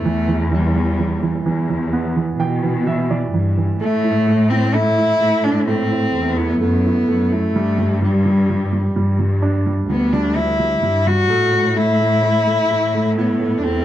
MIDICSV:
0, 0, Header, 1, 4, 480
1, 0, Start_track
1, 0, Tempo, 937500
1, 25, Time_signature, 4, 2, 24, 8
1, 7090, End_track
2, 0, Start_track
2, 0, Title_t, "Cello"
2, 0, Program_c, 0, 42
2, 0, Note_on_c, 0, 57, 84
2, 244, Note_off_c, 0, 57, 0
2, 272, Note_on_c, 0, 55, 72
2, 728, Note_off_c, 0, 55, 0
2, 1947, Note_on_c, 0, 57, 109
2, 2304, Note_on_c, 0, 60, 98
2, 2312, Note_off_c, 0, 57, 0
2, 2427, Note_on_c, 0, 64, 116
2, 2435, Note_off_c, 0, 60, 0
2, 2785, Note_on_c, 0, 62, 98
2, 2792, Note_off_c, 0, 64, 0
2, 2901, Note_off_c, 0, 62, 0
2, 2904, Note_on_c, 0, 60, 92
2, 3264, Note_on_c, 0, 59, 89
2, 3272, Note_off_c, 0, 60, 0
2, 3384, Note_off_c, 0, 59, 0
2, 3386, Note_on_c, 0, 59, 83
2, 3748, Note_on_c, 0, 57, 93
2, 3756, Note_off_c, 0, 59, 0
2, 4106, Note_off_c, 0, 57, 0
2, 4116, Note_on_c, 0, 55, 82
2, 4569, Note_off_c, 0, 55, 0
2, 5069, Note_on_c, 0, 59, 84
2, 5188, Note_on_c, 0, 62, 89
2, 5196, Note_off_c, 0, 59, 0
2, 5308, Note_on_c, 0, 64, 89
2, 5316, Note_off_c, 0, 62, 0
2, 5667, Note_on_c, 0, 66, 113
2, 5675, Note_off_c, 0, 64, 0
2, 6023, Note_on_c, 0, 64, 107
2, 6031, Note_off_c, 0, 66, 0
2, 6742, Note_off_c, 0, 64, 0
2, 6745, Note_on_c, 0, 59, 79
2, 6953, Note_on_c, 0, 62, 70
2, 6960, Note_off_c, 0, 59, 0
2, 6986, Note_on_c, 0, 60, 92
2, 6994, Note_off_c, 0, 62, 0
2, 7090, Note_off_c, 0, 60, 0
2, 7090, End_track
3, 0, Start_track
3, 0, Title_t, "Grand piano"
3, 0, Program_c, 1, 0
3, 0, Control_c, 1, 64, 127
3, 27, Note_on_c, 1, 52, 63
3, 31, Control_c, 1, 64, 0
3, 131, Control_c, 1, 64, 127
3, 136, Note_off_c, 1, 52, 0
3, 144, Note_on_c, 1, 52, 57
3, 255, Note_off_c, 1, 52, 0
3, 263, Note_on_c, 1, 52, 50
3, 379, Note_off_c, 1, 52, 0
3, 387, Note_on_c, 1, 52, 53
3, 498, Note_off_c, 1, 52, 0
3, 506, Note_on_c, 1, 52, 56
3, 620, Note_off_c, 1, 52, 0
3, 628, Note_on_c, 1, 52, 54
3, 739, Note_off_c, 1, 52, 0
3, 747, Note_on_c, 1, 52, 65
3, 860, Note_off_c, 1, 52, 0
3, 867, Note_on_c, 1, 52, 50
3, 988, Note_on_c, 1, 59, 68
3, 1100, Note_off_c, 1, 52, 0
3, 1107, Note_on_c, 1, 52, 54
3, 1218, Note_off_c, 1, 52, 0
3, 1226, Note_on_c, 1, 52, 55
3, 1228, Note_on_c, 1, 79, 74
3, 1341, Note_off_c, 1, 52, 0
3, 1349, Note_on_c, 1, 52, 58
3, 1449, Note_off_c, 1, 79, 0
3, 1460, Note_off_c, 1, 52, 0
3, 1468, Note_on_c, 1, 52, 55
3, 1470, Note_on_c, 1, 76, 71
3, 1579, Note_off_c, 1, 76, 0
3, 1581, Note_off_c, 1, 52, 0
3, 1589, Note_on_c, 1, 52, 53
3, 1589, Note_on_c, 1, 74, 69
3, 1701, Note_off_c, 1, 52, 0
3, 1709, Note_on_c, 1, 52, 58
3, 1822, Note_off_c, 1, 52, 0
3, 1830, Note_on_c, 1, 52, 49
3, 1926, Note_off_c, 1, 59, 0
3, 1926, Note_off_c, 1, 74, 0
3, 1944, Note_off_c, 1, 52, 0
3, 1949, Note_on_c, 1, 57, 61
3, 1951, Control_c, 1, 64, 0
3, 2027, Control_c, 1, 64, 127
3, 2069, Note_on_c, 1, 64, 57
3, 2181, Note_off_c, 1, 57, 0
3, 2189, Note_on_c, 1, 57, 48
3, 2302, Note_off_c, 1, 64, 0
3, 2310, Note_on_c, 1, 64, 55
3, 2420, Note_off_c, 1, 57, 0
3, 2428, Note_on_c, 1, 57, 62
3, 2542, Note_off_c, 1, 64, 0
3, 2550, Note_on_c, 1, 64, 56
3, 2659, Note_off_c, 1, 57, 0
3, 2667, Note_on_c, 1, 57, 60
3, 2778, Note_off_c, 1, 64, 0
3, 2786, Note_on_c, 1, 64, 55
3, 2900, Note_off_c, 1, 57, 0
3, 2907, Note_on_c, 1, 57, 70
3, 3020, Note_off_c, 1, 64, 0
3, 3027, Note_on_c, 1, 64, 47
3, 3140, Note_off_c, 1, 57, 0
3, 3148, Note_on_c, 1, 57, 52
3, 3259, Note_off_c, 1, 64, 0
3, 3267, Note_on_c, 1, 64, 61
3, 3376, Note_off_c, 1, 57, 0
3, 3384, Note_on_c, 1, 57, 57
3, 3501, Note_off_c, 1, 64, 0
3, 3509, Note_on_c, 1, 64, 56
3, 3619, Note_off_c, 1, 57, 0
3, 3627, Note_on_c, 1, 57, 61
3, 3738, Note_off_c, 1, 64, 0
3, 3746, Note_on_c, 1, 64, 55
3, 3858, Note_off_c, 1, 57, 0
3, 3862, Note_off_c, 1, 64, 0
3, 3870, Note_on_c, 1, 55, 66
3, 3871, Control_c, 1, 64, 0
3, 3964, Control_c, 1, 64, 127
3, 3978, Note_off_c, 1, 55, 0
3, 3986, Note_on_c, 1, 55, 56
3, 4099, Note_off_c, 1, 55, 0
3, 4106, Note_on_c, 1, 55, 50
3, 4219, Note_off_c, 1, 55, 0
3, 4227, Note_on_c, 1, 55, 52
3, 4344, Note_off_c, 1, 55, 0
3, 4352, Note_on_c, 1, 55, 57
3, 4460, Note_off_c, 1, 55, 0
3, 4468, Note_on_c, 1, 55, 54
3, 4581, Note_off_c, 1, 55, 0
3, 4589, Note_on_c, 1, 55, 62
3, 4700, Note_off_c, 1, 55, 0
3, 4708, Note_on_c, 1, 55, 52
3, 4825, Note_on_c, 1, 62, 67
3, 4940, Note_off_c, 1, 55, 0
3, 4948, Note_on_c, 1, 55, 50
3, 5060, Note_off_c, 1, 55, 0
3, 5067, Note_on_c, 1, 55, 52
3, 5180, Note_off_c, 1, 55, 0
3, 5188, Note_on_c, 1, 55, 55
3, 5299, Note_off_c, 1, 55, 0
3, 5306, Note_on_c, 1, 55, 53
3, 5418, Note_off_c, 1, 55, 0
3, 5426, Note_on_c, 1, 55, 54
3, 5538, Note_off_c, 1, 55, 0
3, 5545, Note_on_c, 1, 55, 56
3, 5658, Note_off_c, 1, 55, 0
3, 5666, Note_on_c, 1, 55, 45
3, 5764, Note_off_c, 1, 62, 0
3, 5782, Note_off_c, 1, 55, 0
3, 5784, Note_on_c, 1, 57, 68
3, 5791, Control_c, 1, 64, 0
3, 5876, Control_c, 1, 64, 127
3, 5894, Note_off_c, 1, 57, 0
3, 5902, Note_on_c, 1, 57, 50
3, 6016, Note_off_c, 1, 57, 0
3, 6023, Note_on_c, 1, 57, 50
3, 6135, Note_off_c, 1, 57, 0
3, 6143, Note_on_c, 1, 57, 50
3, 6255, Note_off_c, 1, 57, 0
3, 6262, Note_on_c, 1, 57, 55
3, 6377, Note_off_c, 1, 57, 0
3, 6385, Note_on_c, 1, 57, 54
3, 6497, Note_off_c, 1, 57, 0
3, 6505, Note_on_c, 1, 57, 62
3, 6618, Note_off_c, 1, 57, 0
3, 6626, Note_on_c, 1, 57, 51
3, 6746, Note_on_c, 1, 64, 69
3, 6856, Note_off_c, 1, 57, 0
3, 6864, Note_on_c, 1, 57, 54
3, 6976, Note_off_c, 1, 57, 0
3, 6984, Note_on_c, 1, 57, 53
3, 7090, Note_off_c, 1, 57, 0
3, 7090, Note_off_c, 1, 64, 0
3, 7090, End_track
4, 0, Start_track
4, 0, Title_t, "Cello section"
4, 0, Program_c, 2, 48
4, 21, Note_on_c, 2, 40, 109
4, 722, Note_off_c, 2, 40, 0
4, 745, Note_on_c, 2, 40, 89
4, 1204, Note_off_c, 2, 40, 0
4, 1223, Note_on_c, 2, 47, 89
4, 1683, Note_off_c, 2, 47, 0
4, 1705, Note_on_c, 2, 43, 78
4, 1928, Note_off_c, 2, 43, 0
4, 1943, Note_on_c, 2, 45, 108
4, 2643, Note_off_c, 2, 45, 0
4, 2666, Note_on_c, 2, 45, 90
4, 3125, Note_off_c, 2, 45, 0
4, 3144, Note_on_c, 2, 40, 87
4, 3368, Note_off_c, 2, 40, 0
4, 3385, Note_on_c, 2, 42, 96
4, 3608, Note_off_c, 2, 42, 0
4, 3626, Note_on_c, 2, 42, 84
4, 3848, Note_off_c, 2, 42, 0
4, 3864, Note_on_c, 2, 43, 104
4, 4564, Note_off_c, 2, 43, 0
4, 4582, Note_on_c, 2, 43, 91
4, 5043, Note_off_c, 2, 43, 0
4, 5062, Note_on_c, 2, 38, 83
4, 5523, Note_off_c, 2, 38, 0
4, 5543, Note_on_c, 2, 43, 86
4, 5767, Note_off_c, 2, 43, 0
4, 5782, Note_on_c, 2, 45, 95
4, 6483, Note_off_c, 2, 45, 0
4, 6501, Note_on_c, 2, 45, 85
4, 6962, Note_off_c, 2, 45, 0
4, 6982, Note_on_c, 2, 40, 88
4, 7090, Note_off_c, 2, 40, 0
4, 7090, End_track
0, 0, End_of_file